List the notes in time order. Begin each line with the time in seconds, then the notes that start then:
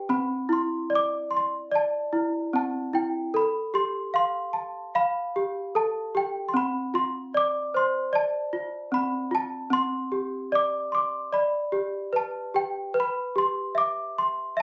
0.09 C4 B5
0.49 E4 C6
0.90 D5
0.95 D6
1.31 C6
1.37 C6
1.72 D5 A5
2.13 E4
2.53 C4 A5
2.93 E4 G5
3.34 A4 B5
3.74 G4 C6
4.14 F5 C6
4.53 A5
4.95 F5 B5
5.36 G4
5.75 A4 A5
6.15 G4 G5
6.49 C6
6.54 C4 B5
6.94 F4 C6
7.34 D5 D6
7.74 C5 C6
8.13 D5 A5
8.53 F4
8.92 C4 B5
9.31 F4 A5
9.70 C4 C6
10.12 G4
10.52 D5 D6
10.92 C6 D6
11.33 D5 B5
11.72 G4
12.13 B4 A5
12.54 G4 G5
12.94 B4
13.00 B5
13.36 G4 C6
13.75 E5 D6
14.18 C6
14.57 E5